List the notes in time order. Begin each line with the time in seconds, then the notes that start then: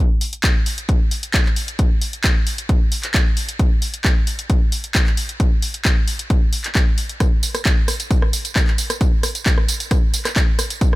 0.21 open hi-hat
0.33 closed hi-hat
0.44 kick, clap, closed hi-hat
0.66 open hi-hat
0.78 closed hi-hat
0.89 kick, closed hi-hat
1.11 open hi-hat
1.23 closed hi-hat
1.34 kick, clap, closed hi-hat
1.46 clap
1.56 open hi-hat
1.68 closed hi-hat
1.79 kick, closed hi-hat
2.01 open hi-hat
2.13 closed hi-hat
2.24 kick, clap, closed hi-hat
2.47 open hi-hat
2.58 closed hi-hat
2.69 kick, closed hi-hat
2.92 open hi-hat
3.03 clap, closed hi-hat
3.14 kick, clap, closed hi-hat
3.37 open hi-hat
3.49 closed hi-hat
3.59 kick, closed hi-hat
3.82 open hi-hat
3.94 closed hi-hat
4.05 kick, clap, closed hi-hat
4.27 open hi-hat
4.39 closed hi-hat
4.50 kick, closed hi-hat
4.72 open hi-hat
4.84 closed hi-hat
4.95 kick, clap, closed hi-hat
5.07 clap
5.17 open hi-hat
5.29 closed hi-hat
5.40 kick, closed hi-hat
5.62 open hi-hat
5.74 closed hi-hat
5.85 kick, clap, closed hi-hat
6.08 open hi-hat
6.19 closed hi-hat
6.30 kick, closed hi-hat
6.53 open hi-hat
6.64 clap, closed hi-hat
6.75 kick, clap, closed hi-hat
6.98 open hi-hat
7.09 closed hi-hat
7.20 kick, cross-stick, closed hi-hat, tambourine
7.43 open hi-hat, tambourine
7.55 cross-stick, closed hi-hat, tambourine
7.65 kick, clap, closed hi-hat, tambourine
7.88 cross-stick, open hi-hat, tambourine
8.00 closed hi-hat, tambourine
8.11 kick, closed hi-hat, tambourine
8.22 cross-stick
8.33 open hi-hat, tambourine
8.45 closed hi-hat, tambourine
8.56 kick, cross-stick, clap, closed hi-hat, tambourine
8.67 clap
8.78 open hi-hat, tambourine
8.90 cross-stick, closed hi-hat, tambourine
9.01 kick, closed hi-hat, tambourine
9.23 cross-stick, open hi-hat, tambourine
9.35 closed hi-hat, tambourine
9.46 kick, clap, closed hi-hat, tambourine
9.58 cross-stick
9.68 open hi-hat, tambourine
9.80 closed hi-hat, tambourine
9.91 kick, cross-stick, closed hi-hat, tambourine
10.14 open hi-hat, tambourine
10.25 cross-stick, clap, closed hi-hat, tambourine
10.36 kick, clap, closed hi-hat, tambourine
10.59 cross-stick, open hi-hat, tambourine
10.70 closed hi-hat, tambourine
10.81 kick, closed hi-hat, tambourine